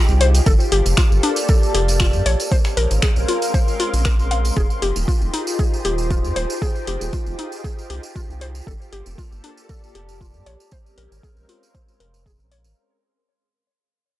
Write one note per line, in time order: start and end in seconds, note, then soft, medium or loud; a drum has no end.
0.00 0.42 D#4 medium
0.00 0.42 F4 medium
0.00 1.19 F4 medium
0.00 2.22 G4 medium
0.00 0.42 G#4 medium
0.00 1.19 C5 medium
0.00 1.19 G5 medium
0.09 0.41 C2 medium
0.09 tambourine soft
0.21 0.26 C5 loud
0.21 open hi-hat loud
0.34 closed hi-hat medium
0.34 tambourine medium
0.46 0.56 G1 loud
0.46 2.24 A#3 medium
0.46 2.24 F4 medium
0.46 2.98 G4 medium
0.46 0.51 A4 loud
0.46 2.24 A4 medium
0.46 kick loud
0.46 closed hi-hat medium
0.46 tambourine medium
0.57 2.26 D5 medium
0.57 tambourine soft
0.72 0.82 G1 medium
0.72 0.77 G4 medium
0.72 open hi-hat loud
0.86 0.94 F1 medium
0.86 closed hi-hat soft
0.86 tambourine medium
0.97 1.01 F4 medium
0.97 2.26 A5 medium
0.97 finger snap loud
0.97 kick loud
0.97 closed hi-hat medium
0.97 tambourine medium
1.11 1.20 G1 medium
1.11 tambourine soft
1.23 1.31 D4 medium
1.23 open hi-hat loud
1.36 closed hi-hat medium
1.36 tambourine medium
1.48 1.52 A4 medium
1.48 kick loud
1.48 tambourine medium
1.63 tambourine soft
1.75 2.15 F1 medium
1.75 1.80 G4 medium
1.75 open hi-hat loud
1.88 closed hi-hat medium
1.88 tambourine medium
2.00 2.05 F4 medium
2.00 finger snap loud
2.00 kick loud
2.00 closed hi-hat medium
2.00 tambourine medium
2.13 2.22 G2 medium
2.13 tambourine soft
2.26 2.36 A#1 loud
2.26 4.54 G#3 medium
2.26 4.54 C4 medium
2.26 4.54 C#4 medium
2.26 4.54 A#4 medium
2.26 5.99 A#4 medium
2.26 2.31 C#5 loud
2.26 open hi-hat loud
2.40 5.62 F5 medium
2.40 closed hi-hat medium
2.40 tambourine medium
2.52 2.57 C5 loud
2.52 kick loud
2.52 closed hi-hat medium
2.52 tambourine medium
2.58 6.22 C6 medium
2.64 finger snap soft
2.64 tambourine soft
2.77 2.87 A#1 medium
2.77 2.82 A#4 medium
2.77 open hi-hat loud
2.91 2.99 G#1 medium
2.91 closed hi-hat soft
2.91 tambourine medium
3.02 3.06 G#4 medium
3.02 finger snap loud
3.02 kick loud
3.02 closed hi-hat medium
3.02 tambourine medium
3.16 3.25 A#1 medium
3.16 tambourine soft
3.28 3.36 F4 medium
3.28 open hi-hat loud
3.42 closed hi-hat soft
3.42 tambourine medium
3.54 3.57 C5 medium
3.54 kick loud
3.54 closed hi-hat soft
3.54 tambourine medium
3.68 tambourine soft
3.80 3.83 F4 medium
3.80 open hi-hat loud
3.94 4.51 A#1 medium
3.94 closed hi-hat soft
3.94 tambourine medium
4.05 4.08 A#4 medium
4.05 finger snap loud
4.05 kick loud
4.05 closed hi-hat medium
4.05 tambourine medium
4.19 tambourine soft
4.31 4.39 F5 medium
4.31 open hi-hat loud
4.45 closed hi-hat medium
4.45 tambourine medium
4.56 4.66 F1 loud
4.56 8.63 D#4 medium
4.56 10.42 F4 medium
4.56 9.35 F4 medium
4.56 10.42 G4 medium
4.56 8.63 G#4 medium
4.56 4.62 G#4 medium
4.56 kick loud
4.56 tambourine medium
4.70 tambourine soft
4.82 4.92 F1 medium
4.82 4.87 G4 medium
4.82 open hi-hat loud
4.96 5.04 D#1 medium
4.96 9.39 C5 medium
4.96 tambourine medium
5.08 5.11 F4 medium
5.08 kick loud
5.08 tambourine medium
5.21 5.30 F1 medium
5.21 tambourine soft
5.34 5.41 D#4 medium
5.34 open hi-hat loud
5.40 9.39 G5 medium
5.47 tambourine medium
5.59 5.62 G#4 medium
5.59 kick loud
5.59 tambourine medium
5.74 tambourine soft
5.85 6.26 D#1 medium
5.85 5.90 G4 medium
5.85 open hi-hat loud
5.98 tambourine medium
6.10 6.16 F4 medium
6.10 kick loud
6.10 tambourine medium
6.24 6.33 F2 medium
6.24 tambourine soft
6.36 6.46 D#1 loud
6.36 6.41 C5 loud
6.36 open hi-hat loud
6.50 tambourine medium
6.62 6.67 G#4 loud
6.62 kick loud
6.62 tambourine medium
6.75 tambourine soft
6.87 6.97 F1 medium
6.87 6.92 G4 medium
6.87 open hi-hat loud
7.01 7.09 D#1 medium
7.01 tambourine medium
7.13 7.16 F4 medium
7.13 kick loud
7.13 tambourine medium
7.26 7.35 F1 medium
7.26 tambourine soft
7.39 7.46 D#4 medium
7.39 open hi-hat loud
7.52 tambourine medium
7.64 7.67 G#4 medium
7.64 kick loud
7.64 tambourine medium
7.79 tambourine soft
7.90 8.00 C2 medium
7.90 7.95 G4 medium
7.90 open hi-hat loud
8.03 tambourine medium
8.16 8.21 F4 medium
8.16 kick loud
8.16 tambourine medium
8.29 8.61 C2 medium
8.29 tambourine soft
8.41 8.46 C5 loud
8.41 open hi-hat loud
8.55 tambourine medium
8.67 8.77 G1 loud
8.67 10.45 A#3 medium
8.67 11.10 G4 medium
8.67 8.72 A4 loud
8.67 10.45 A4 medium
8.67 kick loud
8.67 tambourine medium
8.81 10.46 D5 medium
8.81 tambourine soft
8.93 9.02 G1 medium
8.93 8.98 G4 medium
8.93 open hi-hat loud
9.06 9.15 F1 medium
9.06 tambourine medium
9.10 10.46 A5 medium
9.18 9.21 F4 medium
9.18 kick loud
9.18 tambourine medium
9.32 9.40 G1 medium
9.32 tambourine soft
9.44 9.51 D4 medium
9.44 open hi-hat loud
9.57 tambourine medium
9.69 9.73 A4 medium
9.69 kick loud
9.69 tambourine medium
9.84 tambourine soft
9.95 10.36 F1 medium
9.95 10.00 G4 medium
9.95 open hi-hat loud
10.09 tambourine medium
10.21 10.26 F4 medium
10.21 kick loud
10.21 tambourine medium
10.34 10.43 G2 medium
10.34 tambourine soft
10.46 10.56 A#1 loud
10.46 12.75 G#3 medium
10.46 12.75 C4 medium
10.46 12.75 C#4 medium
10.46 12.75 A#4 medium
10.46 12.77 A#4 medium
10.46 10.51 C#5 loud
10.46 open hi-hat loud
10.60 tambourine medium
10.71 10.77 C5 medium
10.71 kick loud
10.71 tambourine medium
10.86 12.77 C6 medium
10.86 tambourine soft
10.98 11.07 A#1 medium
10.98 11.03 A#4 medium
10.98 open hi-hat loud
11.08 11.20 G#1 medium
11.08 12.77 F5 medium
11.12 tambourine medium
11.23 11.26 G#4 medium
11.23 kick loud
11.23 tambourine medium
11.37 11.45 A#1 medium
11.37 tambourine soft
11.49 11.57 F4 medium
11.49 open hi-hat loud
11.63 tambourine medium
11.75 11.78 C5 medium
11.75 kick loud
11.75 tambourine medium
11.88 tambourine soft
12.00 12.41 F1 medium
12.00 12.05 A#4 medium
12.00 open hi-hat loud
12.14 tambourine medium
12.26 12.31 G#4 medium
12.26 kick loud
12.26 tambourine medium
12.40 12.67 A#1 medium
12.40 tambourine soft
12.52 12.57 C#5 loud
12.52 open hi-hat loud
12.64 12.74 G#1 loud
12.64 tambourine medium